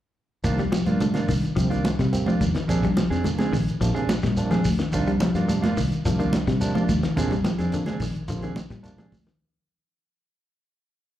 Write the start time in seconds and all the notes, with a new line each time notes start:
0.44 C2 C3 D#3 F3 A#3 D4 F4, kick, closed hi-hat, shekere
0.58 G3, snare, closed hi-hat, shekere
0.72 F3, snare, closed hi-hat, high conga, shekere
0.86 G2 A#3 D4 F4, closed hi-hat, high conga, shekere
1.00 C3 D3 F3 A#3 D4, closed hi-hat, high conga, shekere
1.14 A#3 D4 F4, snare, closed hi-hat, high conga, shekere
1.28 C2 D#3, kick, open hi-hat, shekere
1.43 closed hi-hat, shekere
1.56 C2 C3 F3 A#3 C4, kick, closed hi-hat, shekere
1.70 D#3 A#3 D4 F4, closed hi-hat, shekere
1.85 snare, closed hi-hat, high conga, shekere
1.99 C3 G3, kick, snare, closed hi-hat, shekere
2.12 C3 F3 A#3 C4, closed hi-hat, shekere
2.26 F3 A#3 D4 F4, high conga, shekere
2.41 D#2, kick, closed hi-hat, high conga, shekere
2.54 D#3, snare, closed hi-hat, shekere
2.68 A#1 C3 F3 A#3 C4 D4 G#4, kick, closed hi-hat, shekere
2.83 G3, kick, closed hi-hat, shekere
2.97 F3, snare, closed hi-hat, high conga, shekere
3.10 F2 C4 D4 G#4, snare, closed hi-hat, shekere
3.24 C3 D3 F3 A#3 D4, closed hi-hat, high conga, shekere
3.38 C4 D4 G#4, snare, closed hi-hat, high conga, shekere
3.53 A#1 D#3, kick, snare, open hi-hat, shekere
3.68 closed hi-hat, shekere
3.81 A#1 C3 F3 A#3 D4, kick, closed hi-hat, shekere
3.94 C4 D4 G#4, muted clean electric guitar stroke, closed hi-hat, shekere
4.09 snare, closed hi-hat, high conga, shekere
4.23 A#2 G3, kick, snare, closed hi-hat, shekere
4.37 C3 F3 A#3 D4, closed hi-hat, shekere
4.51 F3 C4 D4 G#4, snare, closed hi-hat, high conga, shekere
4.64 D2, kick, open hi-hat, shekere
4.79 D#3, snare, closed hi-hat, shekere
4.92 C2 C3 D#3 F3 A#3 D4 F4, muted clean electric guitar stroke, kick, closed hi-hat, shekere
5.07 G3, closed hi-hat, shekere
5.20 F3, snare, closed hi-hat, high conga, shekere
5.35 G2 A#3 D4 F4, snare, closed hi-hat, shekere
5.49 C3 F3 A#3 D4, muted clean electric guitar stroke, closed hi-hat, high conga, shekere
5.62 A#3 D4 F4, snare, closed hi-hat, high conga, shekere
5.77 C2 D#3, kick, snare, open hi-hat, shekere
5.92 closed hi-hat, shekere
6.05 C2 C3 F3 A#3 D4, kick, snare, closed hi-hat, shekere
6.19 D#3 A#3 D4 F4, closed hi-hat, shekere
6.33 snare, closed hi-hat, high conga, shekere
6.47 C3 G3, kick, snare, closed hi-hat, shekere
6.60 C3 F3 A#3 D4, closed hi-hat, shekere
6.75 F3 A#3 D4 F4, high conga, shekere
6.89 D#2, kick, closed hi-hat, high conga, shekere
7.03 D#3, snare, closed hi-hat, shekere
7.16 A#1 C3 F3 A#3 C4 D4 G#4, kick, closed hi-hat, shekere
7.31 G3, kick, snare, closed hi-hat, shekere
7.44 F3, snare, closed hi-hat, high conga, shekere
7.58 F2 C4 D4 G#4, snare, closed hi-hat, shekere
7.72 C3 D3 F3 A#3 D4, closed hi-hat, shekere
7.86 C4 D4 G#4, snare, closed hi-hat, high conga, shekere
8.00 A#1 D#3, kick, snare, open hi-hat, shekere
8.15 closed hi-hat, shekere
8.28 A#1 C3 D3 F3 A#3 F4, kick, closed hi-hat, shekere
8.42 D#3 C4 D4 G#4, closed hi-hat, shekere
8.56 snare, closed hi-hat, high conga, shekere
8.70 A#2 G3, kick, snare, closed hi-hat, shekere
8.83 C3 F3 A#3 D4, closed hi-hat, shekere
8.98 F3 C4 D4 G#4, snare, closed hi-hat, high conga, shekere
9.12 D2, kick, open hi-hat, high conga, shekere
9.27 D#3, snare, closed hi-hat, shekere